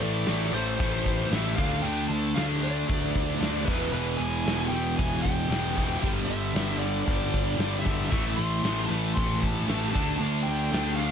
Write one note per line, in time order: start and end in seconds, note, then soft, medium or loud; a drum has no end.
0.00 0.25 A1 medium
0.00 0.26 A2 medium
0.00 0.26 E3 loud
0.00 0.28 A3 loud
0.00 0.50 D5 medium
0.00 crash medium
0.26 0.51 A1 loud
0.26 0.52 A2 medium
0.26 0.53 E3 loud
0.26 0.54 A3 loud
0.26 snare loud
0.26 crash medium
0.53 0.76 A1 medium
0.53 0.77 A2 medium
0.53 0.79 E3 loud
0.53 0.78 A3 medium
0.53 1.34 C5 loud
0.53 crash medium
0.79 1.27 A1 medium
0.79 1.30 A2 loud
0.79 1.31 E3 medium
0.79 1.31 A3 loud
0.79 kick loud
0.79 crash medium
1.06 kick medium
1.06 crash medium
1.31 1.55 A1 medium
1.31 1.56 A2 medium
1.31 1.57 E3 medium
1.31 1.57 A3 medium
1.31 1.56 E5 medium
1.31 snare loud
1.31 crash medium
1.56 1.82 D2 medium
1.56 1.83 D3 medium
1.56 1.83 A3 medium
1.56 1.84 D4 loud
1.56 1.84 F5 loud
1.56 kick loud
1.56 crash medium
1.82 2.07 D2 loud
1.82 2.34 D3 loud
1.82 2.34 A3 loud
1.82 2.35 D4 medium
1.82 2.08 G5 medium
1.82 crash loud
2.08 2.33 D2 loud
2.08 2.36 A5 medium
2.08 crash medium
2.34 2.83 D2 loud
2.34 2.59 D3 medium
2.34 2.60 A3 medium
2.34 2.60 D4 medium
2.34 2.42 F5 loud
2.34 snare loud
2.34 crash medium
2.60 2.86 D3 medium
2.60 2.86 A3 medium
2.60 2.87 D4 loud
2.60 3.71 D5 loud
2.60 crash medium
2.87 3.36 D2 medium
2.87 3.39 D3 loud
2.87 3.40 A3 loud
2.87 3.41 D4 loud
2.87 kick loud
2.87 crash medium
3.16 kick medium
3.16 crash medium
3.40 3.64 D2 medium
3.40 3.65 D3 medium
3.40 3.66 A3 loud
3.40 3.66 D4 loud
3.40 snare loud
3.40 crash medium
3.65 3.91 E1 medium
3.65 3.90 E2 loud
3.65 3.91 B2 loud
3.65 3.92 E3 loud
3.65 3.92 B4 loud
3.65 kick loud
3.65 crash medium
3.91 4.16 E1 loud
3.91 4.44 E2 medium
3.91 4.44 B2 loud
3.91 4.44 E3 loud
3.91 4.20 B4 medium
3.91 crash loud
4.17 4.43 E1 loud
4.17 4.67 G#5 loud
4.17 crash medium
4.45 4.69 E1 loud
4.45 4.70 E2 loud
4.45 4.70 B2 medium
4.45 4.71 E3 medium
4.45 snare loud
4.45 crash medium
4.68 4.95 E1 medium
4.68 4.97 E2 medium
4.68 4.97 B2 loud
4.68 4.98 E3 medium
4.68 4.96 G5 loud
4.74 crash medium
4.97 5.45 E1 loud
4.97 5.48 E2 loud
4.97 5.49 B2 loud
4.97 5.48 E3 loud
4.97 5.21 G#5 loud
4.97 kick loud
4.97 crash loud
5.22 5.99 G5 loud
5.22 kick medium
5.26 crash medium
5.49 5.96 E1 loud
5.49 5.74 E2 medium
5.49 5.74 B2 loud
5.49 5.75 E3 loud
5.49 snare loud
5.49 crash medium
5.75 6.00 E2 medium
5.75 6.00 B2 medium
5.75 6.01 E3 loud
5.75 kick medium
5.75 crash medium
6.00 6.53 G2 medium
6.00 6.54 D3 loud
6.00 6.54 G3 loud
6.00 6.07 G5 loud
6.00 kick loud
6.04 6.26 G1 loud
6.04 crash loud
6.26 6.52 G1 loud
6.26 6.78 E5 loud
6.31 crash medium
6.54 7.01 G1 loud
6.54 6.79 G2 medium
6.54 6.79 D3 medium
6.54 6.80 G3 loud
6.54 snare loud
6.54 crash medium
6.79 7.04 G2 medium
6.79 7.05 D3 loud
6.79 7.06 G3 loud
6.79 7.00 D5 loud
6.83 crash medium
7.02 7.56 G2 loud
7.02 7.79 D5 loud
7.06 7.54 G1 loud
7.06 7.57 D3 loud
7.06 7.57 G3 loud
7.06 kick loud
7.06 crash loud
7.33 kick medium
7.33 crash medium
7.57 7.82 G1 loud
7.57 7.83 G2 loud
7.57 7.84 D3 medium
7.57 7.84 G3 medium
7.57 snare loud
7.57 crash medium
7.79 8.08 E5 loud
7.84 8.09 G1 loud
7.84 8.09 G2 medium
7.84 8.10 D3 medium
7.84 8.10 G3 medium
7.84 kick medium
7.84 crash medium
8.10 8.35 A1 loud
8.10 8.61 A2 medium
8.10 8.62 E3 loud
8.10 8.63 A3 loud
8.10 8.37 E5 medium
8.10 kick loud
8.10 crash loud
8.36 8.61 A1 medium
8.36 8.85 C6 loud
8.36 crash medium
8.63 8.87 A1 loud
8.63 8.88 A2 medium
8.63 8.89 E3 medium
8.63 8.90 A3 loud
8.63 snare loud
8.63 crash medium
8.86 9.15 A2 medium
8.86 9.16 E3 medium
8.86 9.15 A5 loud
8.90 9.13 A1 loud
8.90 9.15 A3 loud
8.90 crash medium
9.14 9.63 A1 medium
9.14 9.66 A2 loud
9.14 9.67 E3 loud
9.14 9.68 A3 loud
9.14 9.42 C6 loud
9.14 kick loud
9.14 crash medium
9.40 10.17 A5 loud
9.40 kick medium
9.40 crash medium
9.67 9.91 A1 loud
9.67 9.92 A2 loud
9.67 9.93 E3 medium
9.67 9.93 A3 loud
9.67 snare loud
9.67 crash medium
9.95 10.19 D2 medium
9.95 10.19 D3 medium
9.95 10.20 A3 loud
9.95 10.20 D4 loud
9.95 kick loud
9.95 crash medium
10.18 10.43 D2 loud
10.18 10.70 D3 loud
10.18 10.71 A3 loud
10.18 10.72 D4 loud
10.18 10.25 A5 medium
10.18 crash loud
10.43 10.70 D2 loud
10.43 10.99 G5 loud
10.43 crash medium
10.72 11.12 D2 medium
10.72 10.97 D3 medium
10.72 10.98 A3 medium
10.72 10.98 D4 loud
10.72 snare loud
10.72 crash medium
10.96 11.12 D3 medium
10.96 11.12 A3 loud
10.96 11.12 D4 loud
10.96 11.12 F5 loud
11.00 crash medium